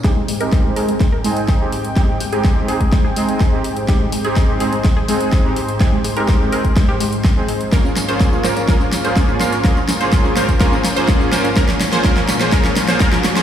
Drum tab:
HH |x-oxx-oxx-oxx-ox|x-oxx-oxx-oxx-ox|x-oxx-oxx-oxx-ox|x-oxx-oxx-oxx-ox|
TB |----------------|----------------|----------------|----------------|
SD |o---o---o---o---|o---o---o---o---|o---o---o---o---|o---o---o---o---|
BD |o---o---o---o---|o---o--oo---o---|o---o---o---o---|o---o--oo---o---|

HH |x-oxx-oxx-oxx-ox|x-oxx-oxx-oxx-ox|x-oxx-oxx-oxx-ox|
TB |xxxxxxxxxxxxxxxx|xxxxxxxxxxxxxxxx|xxxxxxxxxxxxxxxx|
SD |o-o-o-o-o-o-o-o-|o-o-o-o-o-o-o-o-|oooooooooooooooo|
BD |o---o---o---o---|o---o--oo---o---|o---o---o---o---|